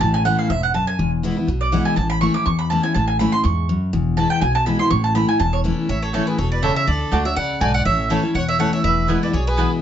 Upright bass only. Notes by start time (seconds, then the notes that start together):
0.01 A1
0.50 E1
0.99 E1
1.47 B1
1.97 A1
2.46 E2
2.95 A1
3.44 E2
3.93 E1
4.42 B1
4.90 A1
5.40 E1
5.89 A1
6.38 E1
6.87 D2
7.12 D2
7.36 C#2
7.61 B1
7.85 A1
8.35 E1
8.84 E1
9.33 B1